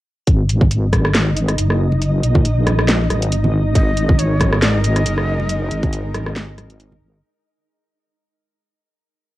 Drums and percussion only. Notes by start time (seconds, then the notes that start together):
0.27 kick, closed hi-hat
0.49 closed hi-hat
0.61 kick, low conga
0.71 closed hi-hat
0.93 kick, cross-stick, closed hi-hat, high conga
1.05 cross-stick
1.15 snare, closed hi-hat
1.36 closed hi-hat
1.48 cross-stick, closed hi-hat
1.58 closed hi-hat
1.70 cross-stick
1.92 high conga
2.02 closed hi-hat
2.23 closed hi-hat
2.35 kick, low conga
2.45 closed hi-hat
2.67 cross-stick, closed hi-hat, high conga
2.79 cross-stick
2.88 snare, closed hi-hat
3.10 cross-stick, closed hi-hat, high conga
3.22 closed hi-hat
3.32 closed hi-hat
3.44 low conga
3.75 kick, closed hi-hat
3.97 closed hi-hat
4.09 kick, low conga
4.19 closed hi-hat
4.40 kick, cross-stick, closed hi-hat, high conga
4.52 cross-stick
4.62 snare, closed hi-hat
4.84 closed hi-hat
4.96 cross-stick, closed hi-hat
5.06 closed hi-hat
5.18 cross-stick
5.40 high conga
5.49 closed hi-hat
5.71 closed hi-hat
5.83 kick, closed hi-hat, low conga
5.93 closed hi-hat
6.14 cross-stick, closed hi-hat, high conga
6.26 cross-stick
6.36 snare, closed hi-hat
6.58 cross-stick, closed hi-hat, high conga
6.70 closed hi-hat
6.80 closed hi-hat
6.92 low conga